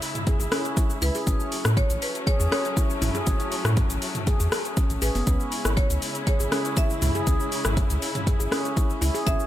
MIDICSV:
0, 0, Header, 1, 6, 480
1, 0, Start_track
1, 0, Key_signature, 4, "minor"
1, 0, Tempo, 500000
1, 1217, Time_signature, 4, 2, 24, 8
1, 9088, End_track
2, 0, Start_track
2, 0, Title_t, "Marimba"
2, 0, Program_c, 0, 12
2, 985, Note_on_c, 0, 71, 104
2, 1703, Note_on_c, 0, 73, 109
2, 1723, Note_off_c, 0, 71, 0
2, 1944, Note_on_c, 0, 71, 94
2, 1947, Note_off_c, 0, 73, 0
2, 2181, Note_on_c, 0, 73, 111
2, 2188, Note_off_c, 0, 71, 0
2, 2410, Note_off_c, 0, 73, 0
2, 2421, Note_on_c, 0, 73, 96
2, 2866, Note_off_c, 0, 73, 0
2, 4821, Note_on_c, 0, 71, 88
2, 5537, Note_on_c, 0, 73, 97
2, 5561, Note_off_c, 0, 71, 0
2, 6012, Note_off_c, 0, 73, 0
2, 6024, Note_on_c, 0, 73, 100
2, 6506, Note_on_c, 0, 76, 102
2, 6515, Note_off_c, 0, 73, 0
2, 6842, Note_off_c, 0, 76, 0
2, 8895, Note_on_c, 0, 76, 123
2, 9088, Note_off_c, 0, 76, 0
2, 9088, End_track
3, 0, Start_track
3, 0, Title_t, "Handpan"
3, 0, Program_c, 1, 114
3, 258, Note_on_c, 1, 68, 98
3, 371, Note_off_c, 1, 68, 0
3, 383, Note_on_c, 1, 68, 74
3, 486, Note_off_c, 1, 68, 0
3, 497, Note_on_c, 1, 61, 101
3, 565, Note_off_c, 1, 61, 0
3, 736, Note_on_c, 1, 64, 86
3, 850, Note_off_c, 1, 64, 0
3, 979, Note_on_c, 1, 64, 101
3, 1097, Note_off_c, 1, 64, 0
3, 1105, Note_on_c, 1, 68, 97
3, 1213, Note_off_c, 1, 68, 0
3, 1218, Note_on_c, 1, 61, 100
3, 1337, Note_off_c, 1, 61, 0
3, 2176, Note_on_c, 1, 68, 98
3, 2289, Note_off_c, 1, 68, 0
3, 2301, Note_on_c, 1, 68, 76
3, 2405, Note_off_c, 1, 68, 0
3, 2415, Note_on_c, 1, 61, 106
3, 2484, Note_off_c, 1, 61, 0
3, 2657, Note_on_c, 1, 64, 79
3, 2770, Note_off_c, 1, 64, 0
3, 2898, Note_on_c, 1, 64, 100
3, 3017, Note_off_c, 1, 64, 0
3, 3022, Note_on_c, 1, 68, 105
3, 3132, Note_off_c, 1, 68, 0
3, 3138, Note_on_c, 1, 61, 100
3, 3257, Note_off_c, 1, 61, 0
3, 4099, Note_on_c, 1, 68, 96
3, 4212, Note_off_c, 1, 68, 0
3, 4223, Note_on_c, 1, 68, 73
3, 4326, Note_off_c, 1, 68, 0
3, 4341, Note_on_c, 1, 68, 77
3, 4452, Note_off_c, 1, 68, 0
3, 4582, Note_on_c, 1, 61, 81
3, 4648, Note_off_c, 1, 61, 0
3, 4819, Note_on_c, 1, 68, 100
3, 4931, Note_off_c, 1, 68, 0
3, 4946, Note_on_c, 1, 59, 78
3, 5007, Note_off_c, 1, 59, 0
3, 5062, Note_on_c, 1, 61, 102
3, 5179, Note_off_c, 1, 61, 0
3, 6019, Note_on_c, 1, 68, 99
3, 6133, Note_off_c, 1, 68, 0
3, 6144, Note_on_c, 1, 68, 72
3, 6247, Note_off_c, 1, 68, 0
3, 6260, Note_on_c, 1, 61, 104
3, 6326, Note_off_c, 1, 61, 0
3, 6502, Note_on_c, 1, 64, 83
3, 6613, Note_off_c, 1, 64, 0
3, 6740, Note_on_c, 1, 64, 101
3, 6858, Note_off_c, 1, 64, 0
3, 6865, Note_on_c, 1, 68, 103
3, 6973, Note_off_c, 1, 68, 0
3, 6980, Note_on_c, 1, 61, 102
3, 7098, Note_off_c, 1, 61, 0
3, 7937, Note_on_c, 1, 68, 100
3, 8049, Note_off_c, 1, 68, 0
3, 8061, Note_on_c, 1, 68, 74
3, 8165, Note_off_c, 1, 68, 0
3, 8174, Note_on_c, 1, 61, 109
3, 8243, Note_off_c, 1, 61, 0
3, 8414, Note_on_c, 1, 64, 82
3, 8529, Note_off_c, 1, 64, 0
3, 8654, Note_on_c, 1, 64, 106
3, 8775, Note_off_c, 1, 64, 0
3, 8779, Note_on_c, 1, 68, 103
3, 8890, Note_off_c, 1, 68, 0
3, 8894, Note_on_c, 1, 61, 106
3, 9015, Note_off_c, 1, 61, 0
3, 9088, End_track
4, 0, Start_track
4, 0, Title_t, "String section"
4, 0, Program_c, 2, 48
4, 0, Note_on_c, 2, 49, 80
4, 0, Note_on_c, 2, 56, 76
4, 0, Note_on_c, 2, 64, 93
4, 0, Note_on_c, 2, 76, 76
4, 1180, Note_off_c, 2, 49, 0
4, 1180, Note_off_c, 2, 56, 0
4, 1180, Note_off_c, 2, 76, 0
4, 1181, Note_off_c, 2, 64, 0
4, 1219, Note_on_c, 2, 61, 94
4, 1220, Note_on_c, 2, 54, 85
4, 1220, Note_on_c, 2, 57, 80
4, 5020, Note_off_c, 2, 57, 0
4, 5020, Note_off_c, 2, 61, 0
4, 5021, Note_off_c, 2, 54, 0
4, 5058, Note_on_c, 2, 56, 78
4, 5058, Note_on_c, 2, 61, 79
4, 5059, Note_on_c, 2, 64, 95
4, 5060, Note_on_c, 2, 49, 84
4, 6959, Note_off_c, 2, 61, 0
4, 6976, Note_on_c, 2, 61, 77
4, 8859, Note_off_c, 2, 56, 0
4, 8860, Note_off_c, 2, 64, 0
4, 8861, Note_off_c, 2, 49, 0
4, 8898, Note_on_c, 2, 54, 88
4, 8898, Note_on_c, 2, 57, 79
4, 9088, Note_off_c, 2, 54, 0
4, 9088, Note_off_c, 2, 57, 0
4, 9088, Note_off_c, 2, 61, 0
4, 9088, End_track
5, 0, Start_track
5, 0, Title_t, "Sub bass"
5, 0, Program_c, 3, 38
5, 382, Note_on_c, 3, 32, 93
5, 456, Note_off_c, 3, 32, 0
5, 978, Note_on_c, 3, 37, 97
5, 1058, Note_off_c, 3, 37, 0
5, 1219, Note_on_c, 3, 33, 99
5, 1298, Note_off_c, 3, 33, 0
5, 1583, Note_on_c, 3, 45, 96
5, 1732, Note_off_c, 3, 45, 0
5, 1824, Note_on_c, 3, 33, 81
5, 1896, Note_off_c, 3, 33, 0
5, 2301, Note_on_c, 3, 40, 95
5, 2375, Note_off_c, 3, 40, 0
5, 2894, Note_on_c, 3, 33, 95
5, 2976, Note_off_c, 3, 33, 0
5, 3139, Note_on_c, 3, 33, 97
5, 3218, Note_off_c, 3, 33, 0
5, 3500, Note_on_c, 3, 45, 101
5, 3651, Note_off_c, 3, 45, 0
5, 3740, Note_on_c, 3, 33, 83
5, 3815, Note_off_c, 3, 33, 0
5, 4222, Note_on_c, 3, 40, 94
5, 4295, Note_off_c, 3, 40, 0
5, 4702, Note_on_c, 3, 33, 90
5, 4776, Note_off_c, 3, 33, 0
5, 4817, Note_on_c, 3, 33, 86
5, 4897, Note_off_c, 3, 33, 0
5, 4942, Note_on_c, 3, 30, 89
5, 5016, Note_off_c, 3, 30, 0
5, 5059, Note_on_c, 3, 37, 103
5, 5138, Note_off_c, 3, 37, 0
5, 5423, Note_on_c, 3, 32, 100
5, 5572, Note_off_c, 3, 32, 0
5, 5662, Note_on_c, 3, 37, 79
5, 5736, Note_off_c, 3, 37, 0
5, 6143, Note_on_c, 3, 32, 98
5, 6216, Note_off_c, 3, 32, 0
5, 6739, Note_on_c, 3, 37, 96
5, 6818, Note_off_c, 3, 37, 0
5, 6979, Note_on_c, 3, 37, 102
5, 7058, Note_off_c, 3, 37, 0
5, 7345, Note_on_c, 3, 32, 99
5, 7493, Note_off_c, 3, 32, 0
5, 7583, Note_on_c, 3, 37, 82
5, 7656, Note_off_c, 3, 37, 0
5, 8063, Note_on_c, 3, 32, 94
5, 8136, Note_off_c, 3, 32, 0
5, 8655, Note_on_c, 3, 37, 93
5, 8736, Note_off_c, 3, 37, 0
5, 8897, Note_on_c, 3, 33, 102
5, 8977, Note_off_c, 3, 33, 0
5, 9088, End_track
6, 0, Start_track
6, 0, Title_t, "Drums"
6, 21, Note_on_c, 9, 46, 95
6, 22, Note_on_c, 9, 82, 59
6, 117, Note_off_c, 9, 46, 0
6, 118, Note_off_c, 9, 82, 0
6, 146, Note_on_c, 9, 42, 42
6, 146, Note_on_c, 9, 45, 81
6, 146, Note_on_c, 9, 82, 55
6, 242, Note_off_c, 9, 42, 0
6, 242, Note_off_c, 9, 45, 0
6, 242, Note_off_c, 9, 82, 0
6, 257, Note_on_c, 9, 42, 63
6, 258, Note_on_c, 9, 82, 55
6, 259, Note_on_c, 9, 36, 118
6, 353, Note_off_c, 9, 42, 0
6, 354, Note_off_c, 9, 82, 0
6, 355, Note_off_c, 9, 36, 0
6, 386, Note_on_c, 9, 82, 104
6, 482, Note_off_c, 9, 82, 0
6, 498, Note_on_c, 9, 37, 101
6, 498, Note_on_c, 9, 46, 91
6, 498, Note_on_c, 9, 82, 57
6, 594, Note_off_c, 9, 37, 0
6, 594, Note_off_c, 9, 46, 0
6, 594, Note_off_c, 9, 82, 0
6, 625, Note_on_c, 9, 42, 31
6, 625, Note_on_c, 9, 82, 57
6, 721, Note_off_c, 9, 42, 0
6, 721, Note_off_c, 9, 82, 0
6, 739, Note_on_c, 9, 36, 127
6, 739, Note_on_c, 9, 42, 66
6, 740, Note_on_c, 9, 82, 100
6, 835, Note_off_c, 9, 36, 0
6, 835, Note_off_c, 9, 42, 0
6, 836, Note_off_c, 9, 82, 0
6, 864, Note_on_c, 9, 82, 56
6, 960, Note_off_c, 9, 82, 0
6, 978, Note_on_c, 9, 46, 97
6, 979, Note_on_c, 9, 82, 101
6, 1074, Note_off_c, 9, 46, 0
6, 1075, Note_off_c, 9, 82, 0
6, 1103, Note_on_c, 9, 46, 53
6, 1104, Note_on_c, 9, 82, 55
6, 1199, Note_off_c, 9, 46, 0
6, 1200, Note_off_c, 9, 82, 0
6, 1219, Note_on_c, 9, 36, 123
6, 1219, Note_on_c, 9, 42, 68
6, 1219, Note_on_c, 9, 82, 100
6, 1315, Note_off_c, 9, 36, 0
6, 1315, Note_off_c, 9, 42, 0
6, 1315, Note_off_c, 9, 82, 0
6, 1345, Note_on_c, 9, 82, 56
6, 1441, Note_off_c, 9, 82, 0
6, 1458, Note_on_c, 9, 46, 87
6, 1459, Note_on_c, 9, 82, 53
6, 1554, Note_off_c, 9, 46, 0
6, 1555, Note_off_c, 9, 82, 0
6, 1584, Note_on_c, 9, 37, 96
6, 1585, Note_on_c, 9, 82, 94
6, 1680, Note_off_c, 9, 37, 0
6, 1681, Note_off_c, 9, 82, 0
6, 1698, Note_on_c, 9, 36, 125
6, 1699, Note_on_c, 9, 42, 65
6, 1700, Note_on_c, 9, 82, 53
6, 1794, Note_off_c, 9, 36, 0
6, 1795, Note_off_c, 9, 42, 0
6, 1796, Note_off_c, 9, 82, 0
6, 1824, Note_on_c, 9, 42, 43
6, 1825, Note_on_c, 9, 82, 96
6, 1920, Note_off_c, 9, 42, 0
6, 1921, Note_off_c, 9, 82, 0
6, 1939, Note_on_c, 9, 46, 94
6, 1940, Note_on_c, 9, 82, 55
6, 2035, Note_off_c, 9, 46, 0
6, 2036, Note_off_c, 9, 82, 0
6, 2065, Note_on_c, 9, 42, 42
6, 2066, Note_on_c, 9, 82, 54
6, 2161, Note_off_c, 9, 42, 0
6, 2162, Note_off_c, 9, 82, 0
6, 2178, Note_on_c, 9, 36, 127
6, 2179, Note_on_c, 9, 42, 64
6, 2179, Note_on_c, 9, 82, 55
6, 2274, Note_off_c, 9, 36, 0
6, 2275, Note_off_c, 9, 42, 0
6, 2275, Note_off_c, 9, 82, 0
6, 2306, Note_on_c, 9, 82, 102
6, 2402, Note_off_c, 9, 82, 0
6, 2421, Note_on_c, 9, 37, 102
6, 2421, Note_on_c, 9, 46, 93
6, 2422, Note_on_c, 9, 82, 58
6, 2517, Note_off_c, 9, 37, 0
6, 2517, Note_off_c, 9, 46, 0
6, 2518, Note_off_c, 9, 82, 0
6, 2544, Note_on_c, 9, 42, 31
6, 2545, Note_on_c, 9, 82, 56
6, 2640, Note_off_c, 9, 42, 0
6, 2641, Note_off_c, 9, 82, 0
6, 2658, Note_on_c, 9, 36, 126
6, 2659, Note_on_c, 9, 42, 67
6, 2660, Note_on_c, 9, 82, 95
6, 2754, Note_off_c, 9, 36, 0
6, 2755, Note_off_c, 9, 42, 0
6, 2756, Note_off_c, 9, 82, 0
6, 2785, Note_on_c, 9, 82, 53
6, 2881, Note_off_c, 9, 82, 0
6, 2898, Note_on_c, 9, 45, 94
6, 2898, Note_on_c, 9, 46, 90
6, 2899, Note_on_c, 9, 82, 98
6, 2994, Note_off_c, 9, 45, 0
6, 2994, Note_off_c, 9, 46, 0
6, 2995, Note_off_c, 9, 82, 0
6, 3022, Note_on_c, 9, 42, 29
6, 3023, Note_on_c, 9, 82, 54
6, 3118, Note_off_c, 9, 42, 0
6, 3119, Note_off_c, 9, 82, 0
6, 3135, Note_on_c, 9, 42, 67
6, 3136, Note_on_c, 9, 82, 97
6, 3139, Note_on_c, 9, 36, 126
6, 3231, Note_off_c, 9, 42, 0
6, 3232, Note_off_c, 9, 82, 0
6, 3235, Note_off_c, 9, 36, 0
6, 3262, Note_on_c, 9, 42, 31
6, 3263, Note_on_c, 9, 82, 54
6, 3358, Note_off_c, 9, 42, 0
6, 3359, Note_off_c, 9, 82, 0
6, 3376, Note_on_c, 9, 46, 86
6, 3377, Note_on_c, 9, 82, 56
6, 3472, Note_off_c, 9, 46, 0
6, 3473, Note_off_c, 9, 82, 0
6, 3504, Note_on_c, 9, 37, 94
6, 3504, Note_on_c, 9, 42, 30
6, 3504, Note_on_c, 9, 45, 88
6, 3505, Note_on_c, 9, 82, 93
6, 3600, Note_off_c, 9, 37, 0
6, 3600, Note_off_c, 9, 42, 0
6, 3600, Note_off_c, 9, 45, 0
6, 3601, Note_off_c, 9, 82, 0
6, 3618, Note_on_c, 9, 42, 65
6, 3618, Note_on_c, 9, 82, 56
6, 3620, Note_on_c, 9, 36, 125
6, 3714, Note_off_c, 9, 42, 0
6, 3714, Note_off_c, 9, 82, 0
6, 3716, Note_off_c, 9, 36, 0
6, 3744, Note_on_c, 9, 42, 42
6, 3745, Note_on_c, 9, 82, 96
6, 3840, Note_off_c, 9, 42, 0
6, 3841, Note_off_c, 9, 82, 0
6, 3858, Note_on_c, 9, 46, 88
6, 3859, Note_on_c, 9, 82, 55
6, 3954, Note_off_c, 9, 46, 0
6, 3955, Note_off_c, 9, 82, 0
6, 3983, Note_on_c, 9, 42, 42
6, 3983, Note_on_c, 9, 45, 87
6, 3984, Note_on_c, 9, 82, 56
6, 4079, Note_off_c, 9, 42, 0
6, 4079, Note_off_c, 9, 45, 0
6, 4080, Note_off_c, 9, 82, 0
6, 4099, Note_on_c, 9, 42, 68
6, 4099, Note_on_c, 9, 82, 56
6, 4100, Note_on_c, 9, 36, 123
6, 4195, Note_off_c, 9, 42, 0
6, 4195, Note_off_c, 9, 82, 0
6, 4196, Note_off_c, 9, 36, 0
6, 4224, Note_on_c, 9, 42, 31
6, 4225, Note_on_c, 9, 82, 97
6, 4320, Note_off_c, 9, 42, 0
6, 4321, Note_off_c, 9, 82, 0
6, 4340, Note_on_c, 9, 37, 92
6, 4340, Note_on_c, 9, 46, 87
6, 4341, Note_on_c, 9, 82, 58
6, 4436, Note_off_c, 9, 37, 0
6, 4436, Note_off_c, 9, 46, 0
6, 4437, Note_off_c, 9, 82, 0
6, 4465, Note_on_c, 9, 42, 30
6, 4466, Note_on_c, 9, 82, 55
6, 4561, Note_off_c, 9, 42, 0
6, 4562, Note_off_c, 9, 82, 0
6, 4578, Note_on_c, 9, 42, 68
6, 4579, Note_on_c, 9, 82, 98
6, 4580, Note_on_c, 9, 36, 127
6, 4674, Note_off_c, 9, 42, 0
6, 4675, Note_off_c, 9, 82, 0
6, 4676, Note_off_c, 9, 36, 0
6, 4704, Note_on_c, 9, 42, 31
6, 4705, Note_on_c, 9, 82, 53
6, 4800, Note_off_c, 9, 42, 0
6, 4801, Note_off_c, 9, 82, 0
6, 4818, Note_on_c, 9, 46, 88
6, 4818, Note_on_c, 9, 82, 98
6, 4914, Note_off_c, 9, 46, 0
6, 4914, Note_off_c, 9, 82, 0
6, 4945, Note_on_c, 9, 46, 48
6, 4946, Note_on_c, 9, 82, 54
6, 5041, Note_off_c, 9, 46, 0
6, 5042, Note_off_c, 9, 82, 0
6, 5059, Note_on_c, 9, 42, 72
6, 5059, Note_on_c, 9, 82, 98
6, 5060, Note_on_c, 9, 36, 118
6, 5155, Note_off_c, 9, 42, 0
6, 5155, Note_off_c, 9, 82, 0
6, 5156, Note_off_c, 9, 36, 0
6, 5185, Note_on_c, 9, 82, 54
6, 5281, Note_off_c, 9, 82, 0
6, 5298, Note_on_c, 9, 46, 87
6, 5298, Note_on_c, 9, 82, 52
6, 5394, Note_off_c, 9, 46, 0
6, 5394, Note_off_c, 9, 82, 0
6, 5426, Note_on_c, 9, 37, 86
6, 5426, Note_on_c, 9, 42, 32
6, 5426, Note_on_c, 9, 82, 96
6, 5522, Note_off_c, 9, 37, 0
6, 5522, Note_off_c, 9, 42, 0
6, 5522, Note_off_c, 9, 82, 0
6, 5540, Note_on_c, 9, 36, 117
6, 5540, Note_on_c, 9, 42, 68
6, 5541, Note_on_c, 9, 82, 52
6, 5636, Note_off_c, 9, 36, 0
6, 5636, Note_off_c, 9, 42, 0
6, 5637, Note_off_c, 9, 82, 0
6, 5666, Note_on_c, 9, 42, 45
6, 5667, Note_on_c, 9, 82, 92
6, 5762, Note_off_c, 9, 42, 0
6, 5763, Note_off_c, 9, 82, 0
6, 5780, Note_on_c, 9, 46, 90
6, 5781, Note_on_c, 9, 82, 55
6, 5876, Note_off_c, 9, 46, 0
6, 5877, Note_off_c, 9, 82, 0
6, 5904, Note_on_c, 9, 42, 44
6, 5905, Note_on_c, 9, 82, 53
6, 6000, Note_off_c, 9, 42, 0
6, 6001, Note_off_c, 9, 82, 0
6, 6018, Note_on_c, 9, 42, 70
6, 6019, Note_on_c, 9, 36, 122
6, 6019, Note_on_c, 9, 82, 51
6, 6114, Note_off_c, 9, 42, 0
6, 6115, Note_off_c, 9, 36, 0
6, 6115, Note_off_c, 9, 82, 0
6, 6144, Note_on_c, 9, 82, 96
6, 6240, Note_off_c, 9, 82, 0
6, 6259, Note_on_c, 9, 37, 89
6, 6259, Note_on_c, 9, 46, 90
6, 6260, Note_on_c, 9, 82, 54
6, 6355, Note_off_c, 9, 37, 0
6, 6355, Note_off_c, 9, 46, 0
6, 6356, Note_off_c, 9, 82, 0
6, 6384, Note_on_c, 9, 42, 33
6, 6385, Note_on_c, 9, 82, 55
6, 6480, Note_off_c, 9, 42, 0
6, 6481, Note_off_c, 9, 82, 0
6, 6496, Note_on_c, 9, 42, 70
6, 6497, Note_on_c, 9, 82, 98
6, 6499, Note_on_c, 9, 36, 126
6, 6592, Note_off_c, 9, 42, 0
6, 6593, Note_off_c, 9, 82, 0
6, 6595, Note_off_c, 9, 36, 0
6, 6626, Note_on_c, 9, 82, 51
6, 6722, Note_off_c, 9, 82, 0
6, 6739, Note_on_c, 9, 45, 102
6, 6739, Note_on_c, 9, 46, 90
6, 6739, Note_on_c, 9, 82, 98
6, 6835, Note_off_c, 9, 45, 0
6, 6835, Note_off_c, 9, 46, 0
6, 6835, Note_off_c, 9, 82, 0
6, 6864, Note_on_c, 9, 42, 30
6, 6864, Note_on_c, 9, 82, 52
6, 6960, Note_off_c, 9, 42, 0
6, 6960, Note_off_c, 9, 82, 0
6, 6978, Note_on_c, 9, 42, 73
6, 6979, Note_on_c, 9, 36, 115
6, 6979, Note_on_c, 9, 82, 91
6, 7074, Note_off_c, 9, 42, 0
6, 7075, Note_off_c, 9, 36, 0
6, 7075, Note_off_c, 9, 82, 0
6, 7106, Note_on_c, 9, 82, 52
6, 7202, Note_off_c, 9, 82, 0
6, 7219, Note_on_c, 9, 46, 86
6, 7220, Note_on_c, 9, 82, 53
6, 7315, Note_off_c, 9, 46, 0
6, 7316, Note_off_c, 9, 82, 0
6, 7342, Note_on_c, 9, 37, 88
6, 7342, Note_on_c, 9, 42, 33
6, 7342, Note_on_c, 9, 45, 90
6, 7343, Note_on_c, 9, 82, 93
6, 7438, Note_off_c, 9, 37, 0
6, 7438, Note_off_c, 9, 42, 0
6, 7438, Note_off_c, 9, 45, 0
6, 7439, Note_off_c, 9, 82, 0
6, 7459, Note_on_c, 9, 36, 111
6, 7459, Note_on_c, 9, 42, 73
6, 7459, Note_on_c, 9, 82, 51
6, 7555, Note_off_c, 9, 36, 0
6, 7555, Note_off_c, 9, 42, 0
6, 7555, Note_off_c, 9, 82, 0
6, 7585, Note_on_c, 9, 42, 48
6, 7586, Note_on_c, 9, 82, 88
6, 7681, Note_off_c, 9, 42, 0
6, 7682, Note_off_c, 9, 82, 0
6, 7701, Note_on_c, 9, 46, 92
6, 7702, Note_on_c, 9, 82, 54
6, 7797, Note_off_c, 9, 46, 0
6, 7798, Note_off_c, 9, 82, 0
6, 7825, Note_on_c, 9, 42, 47
6, 7825, Note_on_c, 9, 45, 90
6, 7826, Note_on_c, 9, 82, 50
6, 7921, Note_off_c, 9, 42, 0
6, 7921, Note_off_c, 9, 45, 0
6, 7922, Note_off_c, 9, 82, 0
6, 7939, Note_on_c, 9, 36, 114
6, 7939, Note_on_c, 9, 42, 69
6, 7940, Note_on_c, 9, 82, 52
6, 8035, Note_off_c, 9, 36, 0
6, 8035, Note_off_c, 9, 42, 0
6, 8036, Note_off_c, 9, 82, 0
6, 8066, Note_on_c, 9, 82, 93
6, 8162, Note_off_c, 9, 82, 0
6, 8180, Note_on_c, 9, 37, 95
6, 8180, Note_on_c, 9, 46, 89
6, 8181, Note_on_c, 9, 82, 53
6, 8276, Note_off_c, 9, 37, 0
6, 8276, Note_off_c, 9, 46, 0
6, 8277, Note_off_c, 9, 82, 0
6, 8306, Note_on_c, 9, 42, 33
6, 8307, Note_on_c, 9, 82, 52
6, 8402, Note_off_c, 9, 42, 0
6, 8403, Note_off_c, 9, 82, 0
6, 8418, Note_on_c, 9, 36, 123
6, 8419, Note_on_c, 9, 42, 71
6, 8419, Note_on_c, 9, 82, 90
6, 8514, Note_off_c, 9, 36, 0
6, 8515, Note_off_c, 9, 42, 0
6, 8515, Note_off_c, 9, 82, 0
6, 8544, Note_on_c, 9, 82, 51
6, 8640, Note_off_c, 9, 82, 0
6, 8658, Note_on_c, 9, 46, 95
6, 8659, Note_on_c, 9, 82, 94
6, 8754, Note_off_c, 9, 46, 0
6, 8755, Note_off_c, 9, 82, 0
6, 8784, Note_on_c, 9, 46, 51
6, 8785, Note_on_c, 9, 82, 52
6, 8880, Note_off_c, 9, 46, 0
6, 8881, Note_off_c, 9, 82, 0
6, 8897, Note_on_c, 9, 42, 74
6, 8897, Note_on_c, 9, 82, 92
6, 8898, Note_on_c, 9, 36, 112
6, 8993, Note_off_c, 9, 42, 0
6, 8993, Note_off_c, 9, 82, 0
6, 8994, Note_off_c, 9, 36, 0
6, 9022, Note_on_c, 9, 82, 52
6, 9088, Note_off_c, 9, 82, 0
6, 9088, End_track
0, 0, End_of_file